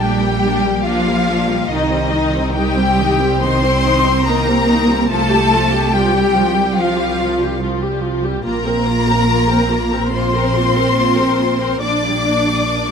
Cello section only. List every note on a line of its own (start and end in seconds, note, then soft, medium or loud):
0.00 0.85 G3 medium
0.85 1.67 F3 medium
1.70 2.54 D#3 medium
2.55 3.42 G3 medium
3.43 4.27 C4 medium
4.27 5.10 A#3 medium
5.11 5.92 A3 medium
5.94 6.77 G3 medium
6.77 7.61 F3 medium
8.45 10.08 A#3 medium
10.12 11.81 C4 medium
11.81 12.91 D4 medium